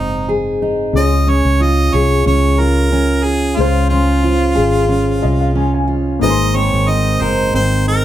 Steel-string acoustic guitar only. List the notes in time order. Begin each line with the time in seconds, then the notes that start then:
Already playing: G#2 C4 D#4 G#4
0.29 G#4
0.62 D#4
1.27 C#4
1.60 F4
1.94 G#4
2.26 C#4
2.59 F4
2.93 C#4
3.26 F4
3.91 C#4
4.24 F4
4.55 G#4
4.89 C#4
5.22 F4
5.55 C#4
5.88 F4
6.21 G#2
6.55 C4
6.88 D#4
7.22 A#4
7.54 C4
7.87 D#4